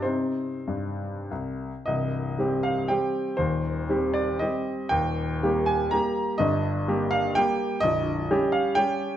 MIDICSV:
0, 0, Header, 1, 2, 480
1, 0, Start_track
1, 0, Key_signature, -3, "minor"
1, 0, Tempo, 632911
1, 28, Time_signature, 3, 2, 24, 8
1, 989, Tempo, 542495
1, 1949, Tempo, 505051
1, 5309, Tempo, 471698
1, 8610, End_track
2, 0, Start_track
2, 0, Title_t, "Grand piano"
2, 0, Program_c, 0, 0
2, 0, Control_c, 0, 64, 127
2, 18, Note_on_c, 0, 72, 64
2, 27, Note_on_c, 0, 48, 45
2, 29, Note_on_c, 0, 60, 37
2, 30, Note_on_c, 0, 63, 38
2, 36, Control_c, 0, 64, 0
2, 224, Control_c, 0, 64, 127
2, 367, Note_off_c, 0, 48, 0
2, 417, Note_off_c, 0, 60, 0
2, 417, Note_off_c, 0, 63, 0
2, 514, Note_on_c, 0, 43, 46
2, 847, Note_off_c, 0, 43, 0
2, 984, Note_off_c, 0, 72, 0
2, 995, Note_on_c, 0, 36, 46
2, 1002, Control_c, 0, 64, 0
2, 1340, Note_off_c, 0, 36, 0
2, 1477, Note_on_c, 0, 75, 73
2, 1492, Note_on_c, 0, 24, 45
2, 1492, Note_on_c, 0, 36, 55
2, 1655, Control_c, 0, 64, 127
2, 1939, Note_off_c, 0, 24, 0
2, 1939, Note_off_c, 0, 36, 0
2, 1946, Note_on_c, 0, 55, 46
2, 1955, Note_on_c, 0, 60, 46
2, 1957, Note_on_c, 0, 67, 51
2, 2180, Note_on_c, 0, 77, 72
2, 2193, Note_off_c, 0, 75, 0
2, 2393, Note_off_c, 0, 55, 0
2, 2398, Note_off_c, 0, 60, 0
2, 2398, Note_off_c, 0, 67, 0
2, 2419, Note_on_c, 0, 79, 74
2, 2424, Note_off_c, 0, 77, 0
2, 2434, Note_on_c, 0, 55, 43
2, 2436, Note_on_c, 0, 60, 42
2, 2439, Control_c, 0, 64, 0
2, 2443, Note_on_c, 0, 67, 46
2, 2859, Note_off_c, 0, 55, 0
2, 2860, Note_off_c, 0, 60, 0
2, 2864, Note_off_c, 0, 67, 0
2, 2879, Note_on_c, 0, 72, 70
2, 2890, Note_off_c, 0, 79, 0
2, 2893, Note_on_c, 0, 39, 56
2, 2899, Note_on_c, 0, 27, 51
2, 3102, Control_c, 0, 64, 127
2, 3355, Note_off_c, 0, 39, 0
2, 3358, Note_off_c, 0, 27, 0
2, 3379, Note_on_c, 0, 55, 49
2, 3385, Note_on_c, 0, 60, 49
2, 3391, Note_on_c, 0, 67, 51
2, 3609, Note_on_c, 0, 74, 70
2, 3610, Note_off_c, 0, 72, 0
2, 3830, Note_off_c, 0, 55, 0
2, 3833, Note_off_c, 0, 60, 0
2, 3836, Note_off_c, 0, 67, 0
2, 3854, Note_on_c, 0, 75, 77
2, 3859, Note_off_c, 0, 74, 0
2, 3876, Control_c, 0, 64, 0
2, 3877, Note_on_c, 0, 60, 44
2, 3878, Note_on_c, 0, 55, 44
2, 3883, Note_on_c, 0, 67, 50
2, 4311, Note_off_c, 0, 55, 0
2, 4311, Note_off_c, 0, 60, 0
2, 4314, Note_off_c, 0, 67, 0
2, 4329, Note_on_c, 0, 79, 85
2, 4337, Note_off_c, 0, 75, 0
2, 4342, Note_on_c, 0, 39, 59
2, 4345, Note_on_c, 0, 27, 52
2, 4519, Control_c, 0, 64, 127
2, 4822, Note_off_c, 0, 39, 0
2, 4823, Note_off_c, 0, 27, 0
2, 4840, Note_on_c, 0, 55, 52
2, 4844, Note_on_c, 0, 58, 52
2, 4849, Note_on_c, 0, 67, 57
2, 5058, Note_on_c, 0, 80, 81
2, 5073, Note_off_c, 0, 79, 0
2, 5273, Note_off_c, 0, 55, 0
2, 5275, Note_off_c, 0, 58, 0
2, 5277, Note_off_c, 0, 67, 0
2, 5295, Note_on_c, 0, 82, 86
2, 5298, Note_off_c, 0, 80, 0
2, 5307, Note_on_c, 0, 55, 47
2, 5311, Note_on_c, 0, 58, 46
2, 5316, Control_c, 0, 64, 0
2, 5321, Note_on_c, 0, 67, 51
2, 5751, Note_off_c, 0, 55, 0
2, 5753, Note_off_c, 0, 58, 0
2, 5758, Note_off_c, 0, 67, 0
2, 5771, Note_on_c, 0, 75, 87
2, 5785, Note_off_c, 0, 82, 0
2, 5785, Note_on_c, 0, 31, 66
2, 5788, Note_on_c, 0, 43, 57
2, 5979, Control_c, 0, 64, 127
2, 6258, Note_off_c, 0, 31, 0
2, 6259, Note_off_c, 0, 43, 0
2, 6282, Note_on_c, 0, 55, 57
2, 6286, Note_on_c, 0, 58, 56
2, 6292, Note_on_c, 0, 67, 63
2, 6512, Note_on_c, 0, 77, 86
2, 6516, Note_off_c, 0, 75, 0
2, 6730, Note_off_c, 0, 55, 0
2, 6732, Note_off_c, 0, 58, 0
2, 6734, Note_off_c, 0, 67, 0
2, 6760, Note_off_c, 0, 77, 0
2, 6762, Note_on_c, 0, 79, 92
2, 6776, Note_on_c, 0, 55, 50
2, 6779, Control_c, 0, 64, 0
2, 6784, Note_on_c, 0, 58, 52
2, 6786, Note_on_c, 0, 67, 53
2, 7198, Note_off_c, 0, 55, 0
2, 7202, Note_off_c, 0, 58, 0
2, 7203, Note_off_c, 0, 67, 0
2, 7222, Note_on_c, 0, 75, 103
2, 7232, Note_off_c, 0, 79, 0
2, 7247, Note_on_c, 0, 34, 66
2, 7249, Note_on_c, 0, 22, 63
2, 7411, Control_c, 0, 64, 127
2, 7709, Note_off_c, 0, 34, 0
2, 7710, Note_off_c, 0, 22, 0
2, 7732, Control_c, 0, 64, 0
2, 7734, Note_on_c, 0, 55, 60
2, 7735, Note_on_c, 0, 67, 64
2, 7740, Note_on_c, 0, 61, 61
2, 7952, Note_on_c, 0, 77, 80
2, 7958, Note_off_c, 0, 75, 0
2, 8170, Note_off_c, 0, 55, 0
2, 8171, Note_off_c, 0, 67, 0
2, 8173, Note_off_c, 0, 61, 0
2, 8186, Note_on_c, 0, 79, 95
2, 8196, Note_off_c, 0, 77, 0
2, 8199, Note_on_c, 0, 55, 53
2, 8207, Note_on_c, 0, 61, 53
2, 8212, Note_on_c, 0, 67, 59
2, 8610, Note_off_c, 0, 55, 0
2, 8610, Note_off_c, 0, 61, 0
2, 8610, Note_off_c, 0, 67, 0
2, 8610, Note_off_c, 0, 79, 0
2, 8610, End_track
0, 0, End_of_file